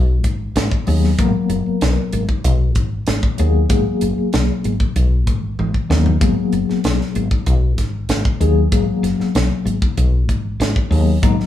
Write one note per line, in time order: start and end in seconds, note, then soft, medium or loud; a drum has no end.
0.00 0.24 B1 loud
0.24 0.49 G#1 medium
0.24 kick medium
0.24 closed hi-hat medium
0.56 0.68 G#1 medium
0.56 snare loud
0.56 closed hi-hat medium
0.71 kick medium
0.87 1.13 D#2 medium
0.87 1.13 F#3 medium
0.87 1.13 A#3 medium
0.87 1.13 B3 medium
0.87 1.13 G#4 medium
0.87 open hi-hat medium
1.04 snare soft
1.18 1.31 G#1 loud
1.18 2.22 F#3 medium
1.18 2.22 A#3 medium
1.18 2.22 B3 medium
1.18 2.23 A#4 medium
1.18 kick medium
1.18 closed hi-hat medium
1.49 1.62 F#1 medium
1.49 closed hi-hat medium
1.66 muted fretless electric bass stroke soft
1.81 1.94 B1 medium
1.81 snare medium
1.81 closed hi-hat medium
1.97 muted fretless electric bass stroke soft
2.13 2.26 G#1 medium
2.13 closed hi-hat medium
2.29 kick medium
2.44 2.76 B1 loud
2.44 closed hi-hat medium
2.75 3.01 G#1 medium
2.75 kick medium
2.75 closed hi-hat medium
3.07 3.20 G#1 medium
3.07 snare medium
3.07 closed hi-hat medium
3.23 kick medium
3.38 3.64 D#2 medium
3.38 3.64 F#3 medium
3.38 3.65 A#3 medium
3.38 3.65 B3 medium
3.38 3.65 G#4 medium
3.38 closed hi-hat medium
3.69 3.83 G#1 loud
3.69 4.73 F#3 medium
3.69 4.73 A#3 medium
3.69 4.73 B3 medium
3.69 4.73 G#4 medium
3.69 kick loud
3.69 closed hi-hat medium
4.01 4.14 F#1 medium
4.01 closed hi-hat medium
4.18 muted fretless electric bass stroke soft
4.33 4.46 B1 medium
4.33 snare loud
4.33 closed hi-hat medium
4.50 muted fretless electric bass stroke soft
4.64 4.77 G#1 medium
4.64 closed hi-hat medium
4.80 kick medium
4.96 5.27 B1 loud
4.96 closed hi-hat medium
5.27 5.52 G#1 medium
5.27 kick medium
5.27 closed hi-hat medium
5.59 5.72 G#1 medium
5.59 high tom medium
5.74 kick medium
5.89 6.15 D#2 medium
5.89 6.15 F#3 medium
5.89 6.16 A#3 medium
5.89 6.16 B3 medium
5.89 6.16 A#4 medium
5.89 snare medium
6.06 floor tom medium
6.20 6.34 G#1 medium
6.20 7.24 F#3 medium
6.20 7.24 A#3 medium
6.20 7.24 B3 medium
6.20 7.25 G#4 medium
6.20 kick loud
6.20 closed hi-hat medium
6.53 6.65 F#1 medium
6.53 closed hi-hat medium
6.69 muted fretless electric bass stroke soft
6.69 snare soft
6.84 6.97 B1 medium
6.84 snare loud
6.84 closed hi-hat medium
7.01 muted fretless electric bass stroke soft
7.01 snare soft
7.15 7.28 G#1 medium
7.15 closed hi-hat medium
7.31 kick medium
7.46 7.78 B1 loud
7.46 closed hi-hat medium
7.78 8.03 G#1 medium
7.78 kick medium
7.78 snare soft
7.78 closed hi-hat medium
8.09 8.22 G#1 medium
8.09 snare loud
8.09 closed hi-hat medium
8.25 kick medium
8.40 8.66 D#2 medium
8.40 8.66 F#3 medium
8.40 8.67 A#3 medium
8.40 8.67 B3 medium
8.40 8.67 G#4 medium
8.40 closed hi-hat medium
8.72 8.85 G#1 medium
8.72 9.75 F#3 medium
8.72 9.75 A#3 medium
8.72 9.75 B3 medium
8.72 9.76 G#4 medium
8.72 kick loud
8.72 closed hi-hat medium
9.03 9.16 F#1 medium
9.03 snare soft
9.03 closed hi-hat medium
9.19 muted fretless electric bass stroke soft
9.19 snare soft
9.35 9.48 B1 medium
9.35 snare loud
9.35 closed hi-hat medium
9.50 muted fretless electric bass stroke soft
9.65 9.78 G#1 medium
9.65 closed hi-hat medium
9.82 kick medium
9.97 10.29 B1 loud
9.97 closed hi-hat medium
10.29 10.54 G#1 loud
10.29 kick medium
10.29 closed hi-hat medium
10.60 10.73 G#1 medium
10.60 snare loud
10.60 closed hi-hat medium
10.76 kick medium
10.90 11.16 D#2 medium
10.90 11.17 F#3 medium
10.90 11.17 A#3 medium
10.90 11.17 B3 medium
10.90 11.17 G#4 medium
10.90 open hi-hat medium
11.22 11.35 G#1 loud
11.22 11.46 F#3 medium
11.22 11.46 A#3 medium
11.22 11.46 B3 medium
11.22 11.46 D#4 medium
11.22 kick loud
11.22 closed hi-hat medium
11.40 snare soft